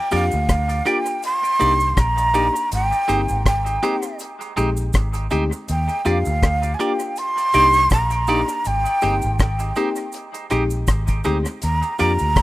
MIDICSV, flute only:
0, 0, Header, 1, 2, 480
1, 0, Start_track
1, 0, Tempo, 742574
1, 1755, Time_signature, 4, 2, 24, 8
1, 8029, End_track
2, 0, Start_track
2, 0, Title_t, "Flute"
2, 0, Program_c, 0, 73
2, 0, Note_on_c, 0, 79, 100
2, 82, Note_off_c, 0, 79, 0
2, 96, Note_on_c, 0, 77, 86
2, 568, Note_on_c, 0, 79, 88
2, 578, Note_off_c, 0, 77, 0
2, 802, Note_off_c, 0, 79, 0
2, 811, Note_on_c, 0, 84, 119
2, 1288, Note_on_c, 0, 82, 102
2, 1298, Note_off_c, 0, 84, 0
2, 1761, Note_off_c, 0, 82, 0
2, 1771, Note_on_c, 0, 79, 101
2, 2217, Note_off_c, 0, 79, 0
2, 2247, Note_on_c, 0, 79, 76
2, 2694, Note_off_c, 0, 79, 0
2, 3690, Note_on_c, 0, 79, 95
2, 3921, Note_on_c, 0, 77, 93
2, 3931, Note_off_c, 0, 79, 0
2, 4358, Note_on_c, 0, 80, 71
2, 4368, Note_off_c, 0, 77, 0
2, 4404, Note_on_c, 0, 79, 93
2, 4414, Note_off_c, 0, 80, 0
2, 4643, Note_on_c, 0, 84, 110
2, 4653, Note_off_c, 0, 79, 0
2, 5118, Note_off_c, 0, 84, 0
2, 5123, Note_on_c, 0, 82, 94
2, 5604, Note_on_c, 0, 79, 100
2, 5614, Note_off_c, 0, 82, 0
2, 6076, Note_off_c, 0, 79, 0
2, 6080, Note_on_c, 0, 79, 74
2, 6530, Note_off_c, 0, 79, 0
2, 7519, Note_on_c, 0, 82, 97
2, 7738, Note_off_c, 0, 82, 0
2, 7757, Note_on_c, 0, 82, 87
2, 8029, Note_off_c, 0, 82, 0
2, 8029, End_track
0, 0, End_of_file